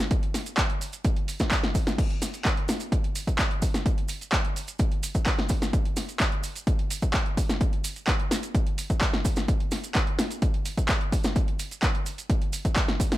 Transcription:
0.11 kick, closed hi-hat, maracas
0.23 closed hi-hat
0.34 snare, open hi-hat, maracas
0.46 closed hi-hat, maracas
0.57 kick, clap, closed hi-hat, maracas
0.70 closed hi-hat
0.81 open hi-hat, maracas
0.93 closed hi-hat, maracas
1.05 kick, closed hi-hat, maracas
1.17 closed hi-hat
1.28 open hi-hat, maracas
1.39 kick, snare, closed hi-hat, maracas
1.51 kick, clap, closed hi-hat, maracas
1.64 snare, closed hi-hat
1.75 kick, open hi-hat, maracas
1.87 snare, closed hi-hat, maracas
1.98 kick, closed hi-hat, crash, maracas
2.10 closed hi-hat
2.22 snare, open hi-hat, maracas
2.34 closed hi-hat, maracas
2.45 kick, clap, closed hi-hat, maracas
2.57 closed hi-hat
2.68 snare, open hi-hat, maracas
2.80 closed hi-hat, maracas
2.92 kick, closed hi-hat, maracas
3.04 closed hi-hat
3.15 open hi-hat, maracas
3.27 kick, closed hi-hat, maracas
3.38 kick, clap, closed hi-hat, maracas
3.51 closed hi-hat
3.62 kick, open hi-hat, maracas
3.74 snare, closed hi-hat, maracas
3.86 kick, closed hi-hat, maracas
3.98 closed hi-hat
4.08 open hi-hat, maracas
4.21 closed hi-hat, maracas
4.32 kick, clap, closed hi-hat, maracas
4.45 closed hi-hat
4.56 open hi-hat, maracas
4.68 closed hi-hat, maracas
4.79 kick, closed hi-hat, maracas
4.92 closed hi-hat
5.03 open hi-hat, maracas
5.15 kick, closed hi-hat, maracas
5.26 kick, clap, closed hi-hat, maracas
5.39 snare, closed hi-hat
5.49 kick, open hi-hat, maracas
5.62 snare, closed hi-hat, maracas
5.73 kick, closed hi-hat, maracas
5.85 closed hi-hat
5.96 snare, open hi-hat, maracas
6.09 closed hi-hat, maracas
6.19 kick, clap, closed hi-hat, maracas
6.32 closed hi-hat
6.43 open hi-hat, maracas
6.56 closed hi-hat, maracas
6.67 kick, closed hi-hat, maracas
6.79 closed hi-hat
6.90 open hi-hat, maracas
7.02 kick, closed hi-hat, maracas
7.14 kick, clap, closed hi-hat, maracas
7.26 closed hi-hat
7.37 kick, open hi-hat, maracas
7.49 snare, closed hi-hat, maracas
7.61 kick, closed hi-hat, maracas
7.73 closed hi-hat
7.84 open hi-hat, maracas
7.96 closed hi-hat, maracas
8.07 kick, clap, closed hi-hat, maracas
8.20 closed hi-hat
8.31 snare, open hi-hat, maracas
8.43 closed hi-hat, maracas
8.55 kick, closed hi-hat, maracas
8.67 closed hi-hat
8.78 open hi-hat, maracas
8.90 kick, closed hi-hat, maracas
9.01 kick, clap, closed hi-hat, maracas
9.13 snare, closed hi-hat
9.25 kick, open hi-hat, maracas
9.36 snare, closed hi-hat, maracas
9.48 kick, closed hi-hat, maracas
9.60 closed hi-hat
9.71 snare, open hi-hat, maracas
9.84 closed hi-hat, maracas
9.95 kick, clap, closed hi-hat, maracas
10.07 closed hi-hat
10.19 snare, open hi-hat, maracas
10.31 closed hi-hat, maracas
10.42 kick, closed hi-hat, maracas
10.54 closed hi-hat
10.65 open hi-hat, maracas
10.77 kick, closed hi-hat, maracas
10.88 kick, clap, closed hi-hat, maracas
11.01 closed hi-hat
11.12 kick, open hi-hat, maracas
11.24 snare, closed hi-hat, maracas
11.36 kick, closed hi-hat, maracas
11.48 closed hi-hat
11.59 open hi-hat, maracas
11.71 closed hi-hat, maracas
11.82 kick, clap, closed hi-hat, maracas
11.95 closed hi-hat
12.06 open hi-hat, maracas
12.18 closed hi-hat, maracas
12.30 kick, closed hi-hat, maracas
12.42 closed hi-hat
12.53 open hi-hat, maracas
12.65 kick, closed hi-hat, maracas
12.76 kick, clap, closed hi-hat, maracas
12.88 snare, closed hi-hat
13.00 kick, open hi-hat, maracas
13.12 snare, closed hi-hat, maracas

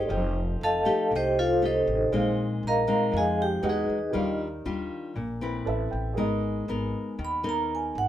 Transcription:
Already playing: A3 D#4 G4 A#4 C5 D#5 G6
0.05 F3 A4 C5 D#5
0.10 F1 G5
0.61 F1 A4 D#5 F5 A5
0.85 A3 D#4 G4
1.11 C2 C3
1.16 G4 C5 D#5 G5
1.39 F4 A4 C5 F5
1.62 A3 D#4 G4 A4 C5
1.66 D#5
1.87 A1
2.10 A#1 A#2 G#3 C4 D#4 G#4 C5
2.14 D#5 F5
2.63 A#1
2.67 A#4 D#5 F5 A#5
2.87 G#3 C4 D#4
3.11 F2 F3
3.17 G#4 D#5 F5 G#5
3.42 G4 G5
3.62 E2 G#3 D#4 F#4 G#4 B4 D#5 F#5
3.69 D#4 G#4 B4 D#5
3.90 E2
4.09 D#3 G3 G4 A#4
4.14 D#2 D4 F4 D5 F5
4.66 D#2 G3 D4 F4
5.16 A#1 A#2
5.41 C4 E4 B4
5.65 A1 A4 B4 E5 A5
5.91 A1 G5
6.13 G#3 B3 G#4 A#4
6.18 G#1 D#4 A#4 D#5
6.68 G#1 B3 D#4 A#4
7.18 D#2 D#3
7.25 B5
7.43 B3 D#4 A#4
7.49 A#5
7.75 G#5
7.95 G#1 F#5

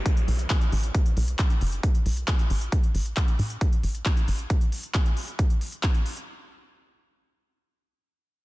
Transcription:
Already playing: downlifter
0.06 kick, closed hi-hat
0.17 closed hi-hat
0.28 B1, open hi-hat
0.39 closed hi-hat
0.50 kick, clap, closed hi-hat
0.61 closed hi-hat
0.72 A1, open hi-hat
0.83 closed hi-hat
0.95 kick, closed hi-hat
1.06 closed hi-hat
1.17 B1, open hi-hat
1.28 closed hi-hat
1.39 kick, clap, closed hi-hat
1.50 closed hi-hat
1.61 F#1, open hi-hat
1.72 closed hi-hat
1.83 kick, closed hi-hat
1.95 closed hi-hat
2.06 B1, open hi-hat
2.17 closed hi-hat
2.28 kick, clap, closed hi-hat
2.39 closed hi-hat
2.50 A1, open hi-hat
2.61 closed hi-hat
2.72 kick, closed hi-hat
2.84 closed hi-hat
2.95 A1, open hi-hat
3.06 closed hi-hat
3.17 kick, clap, closed hi-hat
3.28 closed hi-hat
3.39 A2, open hi-hat
3.50 closed hi-hat
3.61 kick, closed hi-hat
3.72 closed hi-hat
3.83 A1, open hi-hat
3.95 closed hi-hat
4.06 kick, clap, closed hi-hat
4.17 closed hi-hat
4.28 A1, open hi-hat
4.39 closed hi-hat
4.50 kick, closed hi-hat
4.61 closed hi-hat
4.72 open hi-hat
4.83 closed hi-hat
4.94 kick, clap, closed hi-hat
5.06 closed hi-hat
5.17 open hi-hat
5.28 closed hi-hat
5.39 kick, closed hi-hat
5.50 closed hi-hat
5.61 open hi-hat
5.72 closed hi-hat
5.83 kick, clap, closed hi-hat
5.95 closed hi-hat
6.06 open hi-hat
6.17 closed hi-hat

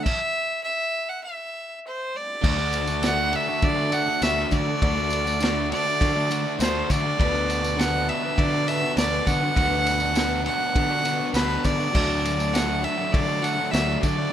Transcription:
0.03 E5, kick, crash
0.63 E5
1.09 F#5
1.23 E5
1.87 C5
2.15 G3 A3 D5
2.20 B3 C4
2.24 D4 E4
2.31 F4 G4
2.36 A4 B4
2.41 D2 D3 A3 D4 F#4 A4 C5 D5, kick, crash
2.45 A4
2.58 A3 D4 F#4, tambourine
2.73 A3 D4 F#4 A4, ride, tambourine
2.87 A3 D4 F#4, tambourine
3.03 D3 A3 D4 F#4 A4, snare, ride, tambourine
3.07 F#5
3.16 F#4 A4
3.32 D3 A3 D4 F#4 E5, ride, tambourine
3.47 A3 D4 F#4
3.62 D3 D5, kick, ride
3.76 A3 D4 F#4 A4
3.91 D3 A3 D4 F#4 A4 F#5, ride, tambourine
4.06 A3 D4 F#4
4.22 D2 D3 A3 D4 F#4 A4 E5, snare, ride, tambourine
4.38 snare, tambourine
4.51 D3 A3 D4 D5, kick, ride, tambourine
4.55 F#4
4.66 A3 D4 F#4 A4
4.81 D2 D3 A3 D4 F#4 A4 D5, kick, ride
4.97 A3 D4 F#4, tambourine
5.10 A3 F#4 A4, ride, tambourine
5.25 A3 D4 F#4, tambourine
5.40 D3 A3 D4 F#4 A4, snare, ride, tambourine
5.56 D4 F#4 A4
5.70 D3 A3 D4 F#4 D5, ride, tambourine
5.85 A3 D4 F#4 A4
6.01 D3, kick, ride
6.14 A3 D4 F#4
6.29 D3 A3 D4 F#4 A4, ride, tambourine
6.44 A3 D4 F#4
6.58 D2 D3 A3 D4 F#4 A4 C5, snare, ride, tambourine
6.77 snare
6.89 D3 A3 D4 F#4 A4 D5, kick, ride, tambourine
7.04 A3 D4 F#4 A4
7.18 D2 D3 B3 D4 F#4 B4 D5, kick, ride
7.34 B3 D4 F#4, tambourine
7.47 B3 B4, ride, tambourine
7.62 B3 D4 F#4, tambourine
7.77 D3 B3 D4 F#4 B4 F#5, snare, ride, tambourine
7.92 D4 F#4 B4
8.07 D3 B3 D4 F#4 E5, ride, tambourine
8.21 D4 F#4 B4
8.25 B3
8.38 D3 D5, kick, ride
8.50 D4 F#4 B4
8.55 B3
8.67 D3 B3 D4 F#4 B4 E5, ride, tambourine
8.81 B3 D4 F#4
8.96 D2 D3 B3 D4 F#4 B4 D5, snare, ride, tambourine
9.14 tambourine
9.26 D3 B3 D4 F#4 B4 F#5, kick, ride, tambourine
9.40 B3 D4 F#4 B4
9.55 D2 D3 B3 D4 F#4 B4, kick, ride, tambourine
9.70 B3 D4 F#4, tambourine
9.86 B3 B4, ride, tambourine
10.00 B3 D4 F#4, tambourine
10.14 D3 B3 D4 F#4 B4, snare, ride, tambourine
10.31 D4 F#4 B4, tambourine
10.44 D3 B3 D4 F#4 F#5, ride, tambourine
10.58 B3 D4 F#4 B4
10.75 D3, kick, ride
10.89 B3 D4 F#4 B4
11.03 D3 B3 D4 F#4 B4, ride, tambourine
11.19 B3 D4 F#4
11.32 D2 D3 B3 D4 F#4 B4, ride, tambourine
11.36 snare
11.50 snare, tambourine
11.63 D3 B3 D4 F#4 D5, kick, ride, tambourine
11.68 B4
11.78 B3 D4 F#4 B4, tambourine
11.93 D2 D3 F#3 A3 D4 F#4 A4 D5, kick, crash
12.07 A3 D4 F#4, tambourine
12.25 D4, ride, tambourine
12.37 A3 D4 F#4, tambourine
12.53 D3 F#3 A3 D4 F#4 D5 F#5, snare, ride, tambourine
12.67 D4 F#4 D5
12.83 F#3 A3 D4 F#4 E5, ride, tambourine
12.97 A3 D4 F#4 D5
13.12 D3 D5, kick, ride
13.26 A3 D4 F#4 D5
13.42 F#3 A3 D4 F#4 F#5, ride, tambourine
13.56 A3 D4 F#4
13.71 D2 D3 F#3 A3 D4 F#4 D5 E5, snare, ride, tambourine
13.89 snare, tambourine
14.01 D3 F#3 A3 D4 F#4 D5, kick, ride, tambourine
14.17 A3 D4 F#4 D5

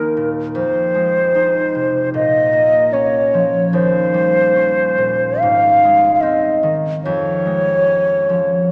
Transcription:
Already playing: D#2 A#3 D#4 A#4
0.17 A#2
0.55 F2 C5
0.94 G#3
1.35 D#4
1.75 C3
2.14 A#2 D#5
2.53 A#3
2.93 C#4 C#5
3.34 F3
3.73 D#2 C5
4.14 G3
4.56 C#4
4.98 A#2
5.40 G#2 F5
5.84 G#3
6.14 F5
6.21 C4 D#5
6.63 D#3
7.04 F2 C#5
7.46 G#3
7.87 C#4
8.29 F3

